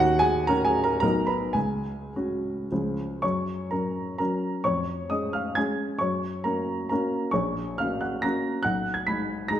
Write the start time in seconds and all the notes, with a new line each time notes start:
Already playing: D#2 F#4 F#5
0.19 G#4 G#5
0.47 C#4 F#4 A#4 A#5
0.65 G#4 G#5
0.84 A#4 A#5
1.00 B1 B3 D#4 F#4 A#4 A#5
1.27 B4 B5
1.53 C#2 G#4 G#5
2.16 C#4 F#4
2.72 C#2 F3 C#4 G#4
3.22 F#2 C#5 C#6
3.71 F#3 C#4 A#4 A#5
4.18 F#3 C#4 A#4 A#5
4.64 F2 C#5 C#6
5.10 G#3 C#4 G#4 D#5 D#6
5.33 F5 F6
5.55 G#3 C#4 G#4 G#5 G#6
5.99 F#2 C#5 C#6
6.44 A#3 C#4 F#4 A#4 A#5
6.89 A#3 C#4 F#4 A#4 A#5
7.31 A#1 C#5 C#6
7.78 A#3 C#4 F#4 F5 F6
8.01 F#5 F#6
8.22 A#3 C#4 F#4 A#5 A#6
8.63 B1 F#5 F#6
8.94 G#6
9.07 G#3 D#4 G#4 B5 B6
9.48 G#3 D#4 G#4 A#5 A#6